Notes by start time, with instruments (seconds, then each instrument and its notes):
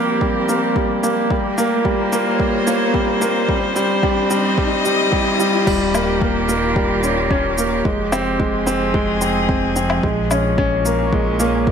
Already playing: string quartet F3 C4 G4, grand piano G3 A#3, riser
0.21 grand piano G3, kick
0.49 grand piano A#3, shaker
0.76 grand piano G3, kick
1.03 grand piano A#3, shaker
1.30 grand piano G3, string quartet A#3, kick
1.58 grand piano A#3, shaker
1.62 string quartet F4
1.84 grand piano G3, string quartet C5, kick
2.12 grand piano A#3, shaker
2.29 string quartet C#5
2.40 grand piano G3, kick
2.67 grand piano A#3, shaker
2.94 grand piano G3, kick
3.21 grand piano A#3, shaker
3.48 grand piano G3, string quartet C4, kick
3.76 grand piano G3, shaker
3.90 string quartet G4
4.03 grand piano G3, kick
4.22 string quartet D#5
4.30 grand piano G3, shaker
4.58 grand piano G3, kick
4.85 grand piano G3, shaker
5.12 grand piano G3, kick
5.39 grand piano G3, shaker
5.66 analog synth bass D#1, string quartet D#3, grand piano G3, kick, crash
5.74 string quartet A#3
5.94 grand piano A#3, string quartet F4, low woodblock, shaker
6.22 grand piano A#3, kick
6.49 grand piano A#3, shaker
6.76 grand piano G3, kick
7.03 grand piano C#4, shaker
7.31 grand piano C#4, kick
7.58 grand piano A#3, shaker
7.85 analog synth bass F1, string quartet F3, grand piano G#3, kick
8.12 grand piano C4, low woodblock, shaker
8.28 string quartet C4
8.40 grand piano G#3, string quartet G#4, kick
8.67 grand piano C4, shaker
8.94 grand piano G#3, kick
9.21 grand piano C4, shaker
9.49 grand piano C4, kick
9.76 grand piano C4, shaker
9.90 low woodblock
10.03 analog synth bass A#1, string quartet A#2, grand piano G#3, kick
10.31 grand piano C#4, low woodblock, shaker
10.58 grand piano C#4, kick
10.69 string quartet C#4
10.85 grand piano A#3, shaker
11.13 grand piano G#3, kick
11.40 grand piano A#3, shaker
11.67 grand piano G#3, kick